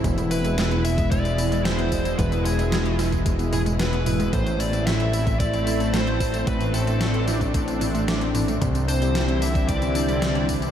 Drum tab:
HH |xxoxxxoxxxoxxxox|xxoxxxoxxxoxxxox|xxoxxxoxxxoxxxox|xxoxxxoxxxoxxxox|
TB |xxxxx-xxxxxxx-xx|xxxxx-xxxxxxx-xx|xxxxx-xxxxxxx-xx|xxxxx-xxxxxxx-xx|
SD |----o-------o---|----o-o-----o---|----o-------o---|----o-o-----o---|
T2 |o---------------|o---------o---o-|o---------------|o---------o---o-|
BD |o------oo-----o-|o------oo-------|o------oo-----o-|o------oo-------|

HH |xxoxxxoxxxoxxxox|
TB |xxxxx-xxxxxxx-xx|
SD |----o-------o---|
T2 |o---------------|
BD |o------oo-----o-|